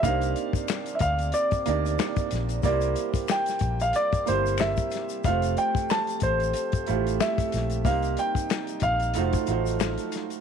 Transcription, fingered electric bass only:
X:1
M:4/4
L:1/16
Q:"Swing 16ths" 1/4=92
K:Cdor
V:1 name="Fingered electric bass" clef=bass
C,,2 z4 D,,2 z2 D,,2 z2 B,,,2 | C,,2 z4 B,,,2 z2 G,,,3 z3 | F,,,2 z4 A,,,2 z2 A,,,2 z2 B,,,2 | C,,2 z4 B,,,2 F,,, z A,,,3 z3 |]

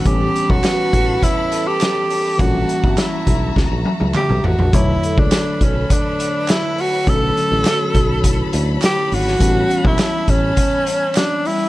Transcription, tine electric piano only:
X:1
M:4/4
L:1/8
Q:1/4=103
K:Bm
V:1 name="Tine electric piano" clef=bass
[E,G,B,C]8 | [E,G,^A,C]8 | [D,F,A,c]8 | [D,F,A,C]8 |
[E,G,B,C]8 |]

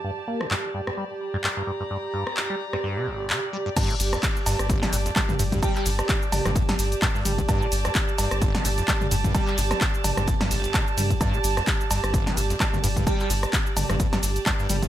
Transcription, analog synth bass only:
X:1
M:4/4
L:1/16
Q:"Swing 16ths" 1/4=129
K:Gm
V:1 name="Analog synth bass" clef=bass
z16 | z16 | z2 G,,, z3 G,,, G,,, z2 G,,, z3 G,,, z | z2 G,,, z3 G,,, G,,, z2 G,,, z3 G,,, z |
z2 G,,, z3 G,,, G,,, z2 G,,, z3 G,,, z | z2 G,,, z3 G,,, G,,, z2 G,,, z3 G,, z | z2 G,,, z3 G,,, G,,, z2 G,,, z3 G,,, z | z2 G,,, z3 G,,, G,,, z2 G,,, z3 G,,, z |]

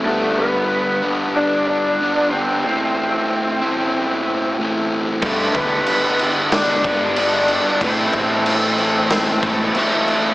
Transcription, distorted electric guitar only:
X:1
M:4/4
L:1/8
Q:1/4=93
K:Am
V:1 name="Distorted electric guitar" clef=bass
[G,,D,G,B,D]3 [G,,D,G,B,D]3 [G,,D,G,B,D]2 | [A,,E,A,CE]3 [A,,E,A,CE]3 [A,,E,A,CE]2 | [G,,D,G,B,D]3 [G,,D,G,B,D]3 [G,,D,G,B,D]2 | [A,,E,A,CE]3 [A,,E,A,CE]3 [A,,E,A,CE]2 |]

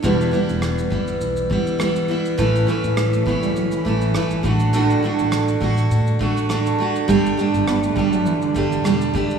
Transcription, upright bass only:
X:1
M:4/4
L:1/16
Q:"Swing 16ths" 1/4=102
K:Edor
V:1 name="Upright bass" clef=bass
E,,,2 z E,,,3 G,,,2 B,,,2 G,,,4 z2 | A,,,2 z A,,,3 C,,3 z A,,,2 G,,,2 A,,,2- | A,,,2 z A,,,3 A,,,2 A,,2 A,,,4 z2 | G,,,2 z G,,,3 G,,,3 z G,,,2 E,,,2 C,,2 |]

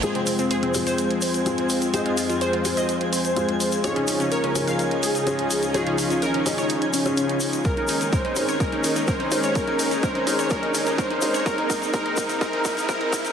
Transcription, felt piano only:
X:1
M:4/4
L:1/16
Q:1/4=126
K:Fm
V:1 name="Felt piano"
[A,CFA]6 [A,CFA]6 [A,CFA]4 | [A,CFA]6 [A,CFA]6 [A,CFA]4 | [DEFA]6 [DEFA]6 [DEFA]4 | [DEFA]6 [DEFA]4- [DEFA] [DEFA]4- [DEFA] |
[DEAB]6 [DEAB]2 [DEAB]6 [DEAB]2 | [DEAB]6 [DEAB]2 [DEAB]6 [DEAB]2 | [CEAB]4 [CEAB]4 [CEAB]4 [CEAB]4 |]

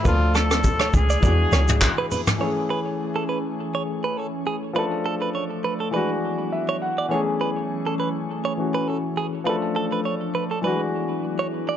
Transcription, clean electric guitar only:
X:1
M:4/4
L:1/16
Q:"Swing 16ths" 1/4=102
K:A
V:1 name="Clean electric guitar"
B z A z2 c z d d z c z2 B B z | c z B z2 A B z2 c z B A z G z | B z A B c z B A B2 z3 c z d | c z B z2 A B z2 c z B A z G z |
B z A B c z B A B2 z3 c z d |]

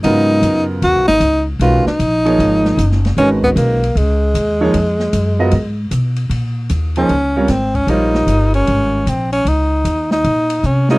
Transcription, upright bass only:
X:1
M:4/4
L:1/8
Q:"Swing" 1/4=153
K:C#mix
V:1 name="Upright bass" clef=bass
G,,2 F,,2 (3D,, B,,, G,,, C,,2 | B,,, z A,,,2 G,,,2 F,,,2 | G,,,2 B,,,2 C,,2 D,,2 | E,,2 F,,2 G,,2 B,,2 |
[K:Bbdor] B,,2 E,,2 D,,2 A,,,2 | B,,,2 G,,,2 A,,,2 B,,,2 | D,,2 E,,2 B,,2 C,2 |]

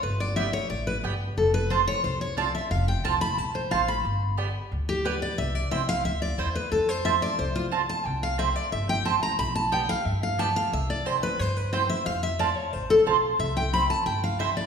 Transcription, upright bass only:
X:1
M:4/4
L:1/8
Q:1/4=180
K:C
V:1 name="Upright bass" clef=bass
G,,,4 A,,,2 G,,,2 | F,,,4 C,,4 | F,,,2 C,,2 B,,,2 A,,,2 | G,,,4 D,,4 |
C,,2 C,,2 D,,2 E,,2 | F,,4 C,,4 | C,,4 G,,,4 | B,,,4 G,,4 |
C,,4 G,,4 | F,,4 A,,,2 B,,,2 | C,,4 G,,,4 |]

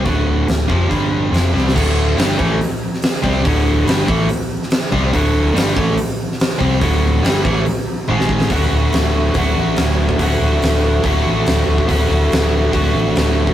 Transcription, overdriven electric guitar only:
X:1
M:4/4
L:1/8
Q:1/4=142
K:Dmix
V:1 name="Overdriven electric guitar" clef=bass
[D,,A,,D,]2 [D,,A,,] [=F,,C,=F,] [G,,D,G,]2 [F,,C,F,] [C,G,C] | [D,,A,,D,]2 [G,,D,G,] [A,,E,A,] z3 [C,G,C] | [D,,A,,D,]2 [G,,D,G,] [A,,E,A,] z3 [C,G,C] | [D,,A,,D,]2 [G,,D,G,] [A,,E,A,] z3 [C,G,C] |
[D,,A,,D,]2 [G,,D,G,] [A,,E,A,] z2 [^G,,^D,^G,]2 | [D,,A,,D,A,F]4 [D,,A,,D,A,F]4 | [D,,A,,D,A,F]4 [D,,A,,D,A,F]4 | [D,,A,,D,A,F]4 [D,,A,,D,A,F]4 |]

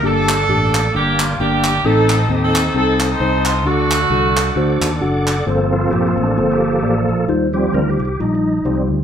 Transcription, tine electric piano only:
X:1
M:4/4
L:1/8
Q:"Swing" 1/4=132
K:Gm
V:1 name="Tine electric piano"
[B,DG] z [B,DG] z [B,DG] z [B,DG] z | [CEA] z [CEA] z [CEA] z [CEc] z | [D^FA] z [DFA] z [DFc] z [DFA] z | [B,FAc] [B,FAc] [B,FAc] z [B,FAc] z [B,FAd] z |
[G,EFc] [G,EFc] [G,EFc] z [G,EFe] z [G,EFG] z |]
V:2 name="Tine electric piano" clef=bass
G,,3 z4 z | A,,3 z4 z | D,3 z2 a ^f2 | G,,3 z4 z |
E,3 z4 z |]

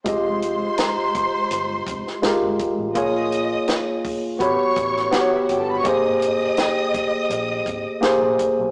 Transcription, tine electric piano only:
X:1
M:4/4
L:1/8
Q:"Swing 16ths" 1/4=83
K:Fm
V:1 name="Tine electric piano"
[A,FGe]3 z3 [A,FGB]2 | [B,FAd]3 z [=B,^FG^c]2 [B,FG=Bc]2 | [B,GAc]3 z3 [B,GAc]2 |]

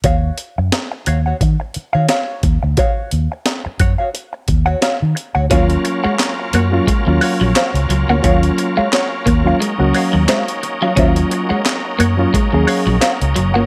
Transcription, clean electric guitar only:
X:1
M:4/4
L:1/16
Q:"Swing 16ths" 1/4=88
K:Ebm
V:1 name="Clean electric guitar" clef=bass
z16 | z16 | D z2 A, z2 B, z A, z2 G, z2 G, B, | D z2 A, z2 B, z A, z2 G, A, z2 G, |
D z2 A, z2 B, z A, z2 G, z2 G, B, |]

